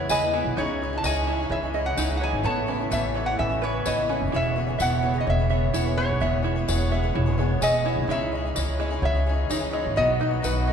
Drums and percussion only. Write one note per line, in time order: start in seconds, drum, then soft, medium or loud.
0.09 tambourine medium
1.04 tambourine medium
1.98 tambourine medium
2.92 tambourine medium
3.86 tambourine medium
4.80 tambourine medium
5.74 tambourine medium
6.68 tambourine medium
7.62 tambourine medium
8.56 tambourine medium
9.51 tambourine medium
10.44 tambourine medium